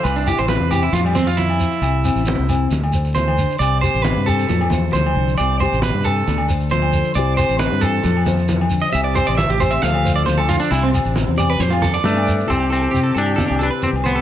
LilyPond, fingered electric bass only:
\new Staff \with { instrumentName = "Fingered electric bass" } { \clef bass \time 4/4 \key c \major \tempo 4 = 135 c,8. a,,8 e,8. f,2 | c,8. a,,8 c,8. d,2 | c,8. a,,8 g,8. f,8 e,8 d,8 c,8 | c,8. a,,8 g,8. d,2 |
c,8. a,,8 g,8. f,2 | c,8. a,,8 a,,8. d,2 | c,8. a,,8 e,8. f,4 g,4 | c,4 c8 g,8 r16 c,8 r8 c,8. | }